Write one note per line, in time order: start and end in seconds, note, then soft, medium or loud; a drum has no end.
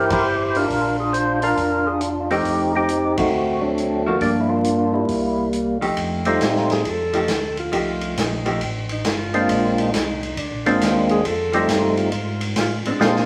0.00 0.66 G1 medium
0.00 0.17 E3 soft
0.00 0.17 A#3 soft
0.00 0.18 D4 medium
0.00 0.11 E4 medium
0.00 0.11 G4 medium
0.00 0.23 A#4 medium
0.00 0.11 C5 medium
0.10 0.66 E4 medium
0.10 0.66 G4 medium
0.10 0.57 C5 medium
0.10 kick medium
0.10 ride medium
0.55 1.39 D4 medium
0.55 1.40 F4 medium
0.55 0.97 A#4 medium
0.55 open hi-hat soft
0.70 1.54 A#1 medium
0.70 kick soft
0.70 open hi-hat soft
1.00 1.13 G#4 medium
1.13 1.43 C5 medium
1.13 closed hi-hat soft
1.42 2.27 D4 medium
1.42 2.00 F4 medium
1.42 1.88 A#4 medium
1.42 open hi-hat soft
1.57 2.42 F1 medium
1.57 kick soft
1.57 open hi-hat soft
1.87 2.01 G#4 medium
2.01 2.10 F4 medium
2.01 closed hi-hat soft
2.20 2.30 F4 medium
2.30 2.87 F3 medium
2.30 2.87 A3 medium
2.30 2.75 C4 medium
2.30 2.74 D#4 medium
2.30 2.87 D#4 medium
2.30 2.87 G4 medium
2.30 2.72 G4 medium
2.30 open hi-hat soft
2.45 3.29 F1 medium
2.45 kick soft
2.45 open hi-hat soft
2.76 3.18 C4 medium
2.76 3.30 D#4 medium
2.76 3.17 G4 medium
2.89 closed hi-hat medium
3.18 3.60 A3 medium
3.18 4.03 C4 medium
3.18 3.64 F#4 medium
3.18 kick medium
3.18 ride medium
3.32 4.17 D2 medium
3.61 4.17 F#3 medium
3.61 4.17 A3 medium
3.61 4.07 D4 medium
3.78 closed hi-hat soft
4.06 4.63 F3 medium
4.06 4.63 A#3 medium
4.06 4.63 D4 medium
4.06 4.21 F#4 medium
4.21 5.05 G2 medium
4.21 4.48 A#3 medium
4.21 4.49 D4 medium
4.21 4.30 G4 medium
4.21 kick soft
4.21 open hi-hat soft
4.40 4.50 E4 medium
4.49 4.93 A#3 medium
4.49 5.05 D4 medium
4.49 4.95 F4 medium
4.64 closed hi-hat medium
4.94 5.78 G3 medium
4.94 5.78 A#3 soft
4.94 5.49 E4 medium
5.09 5.78 C2 medium
5.09 kick soft
5.09 open hi-hat soft
5.53 closed hi-hat soft
5.81 5.90 C2 soft
5.81 6.38 F3 medium
5.81 6.38 A3 medium
5.81 6.39 D#4 medium
5.81 6.39 G4 medium
5.81 open hi-hat soft
5.97 6.40 F2 medium
5.97 kick soft
5.97 ride medium
6.25 6.83 G3 medium
6.25 6.82 A3 medium
6.25 6.83 C4 medium
6.25 6.83 D#4 medium
6.25 6.83 F4 medium
6.25 ride soft
6.41 6.84 A2 medium
6.41 kick soft
6.41 snare medium
6.41 hi-hat pedal soft
6.41 ride medium
6.56 snare soft
6.70 6.91 G#4 medium
6.70 snare soft
6.70 ride soft
6.85 7.28 F2 medium
6.85 kick soft
6.85 ride medium
6.89 7.59 A4 loud
7.13 7.28 F3 medium
7.13 7.28 A3 medium
7.13 7.28 D#4 medium
7.13 7.28 G4 medium
7.13 ride soft
7.28 7.72 D2 medium
7.28 kick soft
7.28 snare medium
7.28 hi-hat pedal medium
7.28 ride medium
7.57 8.21 F4 medium
7.57 ride soft
7.72 8.16 C2 medium
7.72 8.40 F3 medium
7.72 8.40 A3 medium
7.72 8.40 D#4 medium
7.72 8.40 G4 medium
7.72 kick soft
7.72 ride medium
8.01 ride soft
8.17 8.60 A#1 medium
8.17 8.48 D#4 medium
8.17 kick soft
8.17 snare medium
8.17 hi-hat pedal medium
8.17 ride medium
8.46 8.60 F3 medium
8.46 8.60 A3 medium
8.46 8.60 D#4 medium
8.46 8.60 G4 medium
8.46 ride soft
8.61 9.04 A1 medium
8.61 kick soft
8.61 ride medium
8.89 9.10 D#4 medium
8.89 ride soft
9.05 9.48 G1 medium
9.05 kick soft
9.05 snare medium
9.05 hi-hat pedal soft
9.05 ride medium
9.09 9.80 F4 medium
9.34 9.90 G#3 medium
9.34 9.90 A#3 medium
9.34 9.90 C4 medium
9.34 9.90 D4 medium
9.34 9.91 F4 medium
9.34 ride soft
9.49 9.92 A#1 medium
9.49 kick soft
9.49 ride medium
9.78 10.40 D#4 medium
9.78 ride medium
9.93 10.36 C2 medium
9.93 kick soft
9.93 snare medium
9.93 hi-hat pedal medium
9.93 ride medium
10.23 ride soft
10.37 10.51 D2 medium
10.37 10.67 D4 medium
10.37 kick soft
10.37 ride medium
10.51 10.66 A#1 medium
10.66 10.80 G#1 medium
10.66 11.22 G#3 medium
10.66 10.80 G#3 medium
10.66 11.22 A#3 medium
10.66 11.22 C4 medium
10.66 10.80 C4 medium
10.66 11.22 D4 medium
10.66 10.80 D4 medium
10.66 11.22 F4 medium
10.66 ride soft
10.81 11.24 D#2 medium
10.81 kick soft
10.81 snare medium
10.81 hi-hat pedal medium
10.81 ride medium
11.09 11.28 G#4 medium
11.09 ride soft
11.24 11.67 F2 medium
11.24 11.97 A4 medium
11.24 kick soft
11.24 ride medium
11.52 11.67 F3 medium
11.52 12.10 G3 medium
11.52 11.67 A3 medium
11.52 12.10 A3 medium
11.52 12.10 C4 medium
11.52 11.67 D#4 medium
11.52 12.10 D#4 medium
11.52 12.10 F4 medium
11.52 11.67 G4 medium
11.52 ride soft
11.68 12.11 G2 medium
11.68 kick soft
11.68 snare medium
11.68 hi-hat pedal medium
11.68 ride medium
11.97 12.53 F4 medium
11.97 ride soft
12.12 12.55 G#2 medium
12.12 kick soft
12.12 ride medium
12.41 ride medium
12.56 12.83 A2 medium
12.56 12.76 F4 medium
12.56 kick soft
12.56 snare medium
12.56 hi-hat pedal medium
12.56 ride medium
12.85 12.93 A2 soft
12.85 13.00 G#3 medium
12.85 13.00 C4 medium
12.85 13.00 D4 medium
12.85 ride soft
13.00 13.26 A#2 medium
13.00 13.26 G#3 medium
13.00 13.26 A#3 medium
13.00 13.26 C4 medium
13.00 13.26 D4 medium
13.00 13.26 F4 medium
13.00 snare loud
13.16 snare soft